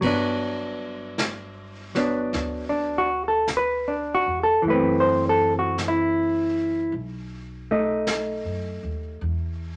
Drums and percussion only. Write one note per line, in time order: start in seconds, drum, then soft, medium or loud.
0.02 brush sweep soft
0.02 kick medium
0.02 ride medium
1.18 brush sweep soft
1.18 snare soft
1.18 hi-hat pedal soft
1.95 snare soft
2.33 brush sweep soft
2.33 snare soft
3.48 brush sweep soft
3.48 snare soft
3.48 hi-hat pedal soft
4.63 brush sweep soft
5.78 brush sweep soft
5.78 snare soft
5.78 hi-hat pedal soft
6.92 brush sweep soft
8.07 brush sweep soft
8.07 snare soft
8.07 hi-hat pedal soft
9.21 brush sweep soft